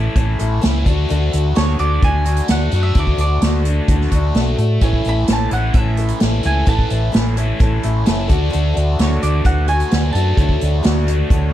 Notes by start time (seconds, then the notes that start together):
Already playing: A2 E3 A3 C#4 E4 A4
0.15 A1 A3 C#4 E4 A4, kick, closed hi-hat
0.39 A1 A3 C#4 E4 A4, closed hi-hat
0.61 C#2 A2 E3 A3 C#4 E4 A4, snare, closed hi-hat
0.67 E4
0.85 D2 D3 A3 D4 F#4 A4, kick, closed hi-hat
1.09 D2 D3 A3 D4 F#4 A4, closed hi-hat
1.32 D2 D4 F#4 A4, closed hi-hat
1.55 D2 D3 A3 D4 F#4 A4 C#5, snare, closed hi-hat
1.79 D2 D4 F#4 A4 D5, closed hi-hat
2.02 D2 A3 D4 F#4 A4 G#5, kick, closed hi-hat
2.25 D4 F#4 A4, closed hi-hat
2.29 D3 A3
2.36 closed hi-hat
2.48 D2 D3 A3 D4 F#4 A4 F#5, snare, closed hi-hat
2.71 F#2 D3 A3 D4 F#4 A4, closed hi-hat
2.83 E5
2.95 D2 D3 A3 D4 F#4 A4, kick, closed hi-hat
2.99 D5
3.07 kick
3.18 D2 A4 D5, closed hi-hat
3.22 D4 F#4
3.42 D2 D3 A3 D4 F#4 A4, snare, closed hi-hat
3.65 D4 F#4 A4, closed hi-hat
3.88 D2 A3 D4 F#4 A4, kick, closed hi-hat
4.01 snare
4.11 D2 D3 A3 D4 F#4 A4, kick, closed hi-hat
4.34 B1 D3 A3 D4 F#4 A4, snare, closed hi-hat
4.58 A2 D4 F#4 A4, closed hi-hat
4.81 A1 A2 E3 A3 C#4 E4 A4 C#5, kick, closed hi-hat
4.93 kick
5.04 A1 C#4 E4 A4, closed hi-hat
5.09 A3 B5
5.27 A1 A2 E3 A3 C#4 E4 A4 C#5, snare, closed hi-hat
5.33 A5
5.51 A1 A2 E3 A3 C#4 E4 A4 F#5, closed hi-hat
5.74 A1 A3 C#4 E4 A4 C#5 E5, kick, closed hi-hat
5.97 A3 C#4 E4 A4 B4, closed hi-hat
6.08 closed hi-hat
6.20 A1 A2 E3 A3 C#4 E4 A4 E5, snare, closed hi-hat
6.43 C#2 A3 C#4 E4 A4 G#5, closed hi-hat
6.66 A1 A2 E3 A3 C#4 E4 A4 B4 A5, kick, closed hi-hat
6.79 kick
6.89 A1 A3 C#4 E4 A4, closed hi-hat
7.12 A1 A2 E3 A3 C#4 E4 A4, snare, closed hi-hat
7.17 C#5
7.36 E3 A3 C#4 E4 A4, closed hi-hat
7.41 A2
7.59 A1 A3 C#4 E4 A4 C#5, kick, closed hi-hat
7.83 A1 A3 C#4 E4 A4 E5, closed hi-hat
8.06 F#1 A2 E3 A3 C#4 E4 A4 E5, snare, closed hi-hat
8.28 D2 D3 A3 D4 F#4 A4 D5, kick, closed hi-hat
8.50 D3 A3 D4 F#4 A4, closed hi-hat
8.54 D2
8.74 D2 D4 F#4 A4, closed hi-hat
8.99 D2 D3 A3 D4 F#4 A4 C#5 D5, snare, closed hi-hat
9.22 D2 D4 F#4 A4 D5, closed hi-hat
9.44 D2 A3 D4 F#4 A4 B4 F#5, kick, closed hi-hat
9.66 F#4 A4 D5 G#5, closed hi-hat
9.70 D3 A3 D4 F#4
9.80 closed hi-hat
9.90 D2 D3 A3 D4 F#4 A4 B4, snare, closed hi-hat
9.94 A4
10.13 F#2 D3 A3 F#4 A4 A5, closed hi-hat
10.17 D4
10.35 D2 D3 A3 D4 F#4 A4 C#5, kick, closed hi-hat
10.39 A4
10.49 kick
10.61 D2 D4 F#4 A4, closed hi-hat
10.83 D2 D3 A3 D4 F#4 A4 D5, snare, closed hi-hat
11.07 D4 F#4 A4, closed hi-hat
11.30 D2 A3 D4 F#4 A4 C#5, kick, closed hi-hat